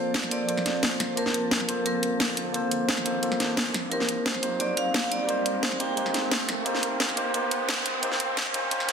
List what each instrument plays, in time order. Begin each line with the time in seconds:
Already playing: ambient pad F3 A#3 C4 A5, tine electric piano A#3 F4 A4 C5 A5, vibraphone C5, riser
0.06 sub bass G1
0.14 snare, closed hi-hat
0.23 snare
0.31 tine electric piano A#3 F4 A4 C5, vibraphone D5, closed hi-hat
0.48 tine electric piano A#3 F4 A4 C5, closed hi-hat
0.57 snare
0.66 snare, closed hi-hat
0.83 sub bass A#1, vibraphone C5, snare, closed hi-hat
1.00 snare, closed hi-hat
1.15 sub bass G1, tine electric piano A#3 F4 C5 A5, vibraphone A#4, closed hi-hat
1.26 snare
1.34 closed hi-hat
1.51 snare, closed hi-hat
1.60 snare
1.68 tine electric piano A#3 F4 A4 C5, closed hi-hat
1.85 sub bass A1, tine electric piano A#3 F4 A4 C5, vibraphone A#4, closed hi-hat
2.03 closed hi-hat
2.20 vibraphone A4, snare, closed hi-hat
2.37 vibraphone C5, closed hi-hat
2.52 sub bass G1, tine electric piano A#3 F4 A4 C5, closed hi-hat
2.71 closed hi-hat
2.80 sub bass G1
2.89 snare, closed hi-hat
2.97 snare
3.05 tine electric piano A#3 F4 A4 C5, closed hi-hat
3.22 tine electric piano A#3 F4 A4 C5, closed hi-hat
3.32 snare
3.40 snare, closed hi-hat
3.57 snare, closed hi-hat
3.74 ambient pad C4 D#4 A#4, snare, closed hi-hat
3.90 tine electric piano A#3 D#4 G4 C5, vibraphone A#4, closed hi-hat
4.00 snare
4.09 closed hi-hat
4.26 vibraphone C5, snare, closed hi-hat
4.35 snare
4.42 tine electric piano A#3 D#4 G4 C5, closed hi-hat
4.59 sub bass D2, tine electric piano A#3 D#4 G4 C5, vibraphone D5, closed hi-hat
4.77 vibraphone F5, closed hi-hat
4.94 snare, closed hi-hat
5.12 vibraphone D5, closed hi-hat
5.27 sub bass C2, tine electric piano A#3 D#4 G4 C5, closed hi-hat
5.46 closed hi-hat
5.63 vibraphone C5, snare, closed hi-hat
5.72 snare
5.79 tine electric piano A#3 D#4 G4 C5, vibraphone G5, closed hi-hat
5.97 tine electric piano A#3 D#4 G4 C5, closed hi-hat
6.06 snare
6.14 snare, closed hi-hat
6.31 snare, closed hi-hat
6.49 snare, closed hi-hat
6.64 sub bass C2, tine electric piano A#3 D#4 G4 C5, closed hi-hat
6.75 snare
6.83 closed hi-hat
7.00 snare, closed hi-hat
7.09 snare
7.17 tine electric piano A#3 D#4 G4 C5, closed hi-hat
7.34 sub bass D2, tine electric piano A#3 D#4 G4 C5, closed hi-hat
7.51 closed hi-hat
7.69 snare, closed hi-hat
7.86 closed hi-hat
8.01 tine electric piano A#3 D#4 G4 C5, closed hi-hat
8.12 snare
8.20 closed hi-hat
8.37 snare, closed hi-hat
8.46 snare
8.53 tine electric piano A#3 D#4 G4 C5, closed hi-hat
8.71 tine electric piano A#3 D#4 G4 C5, closed hi-hat
8.80 snare
8.89 snare, closed hi-hat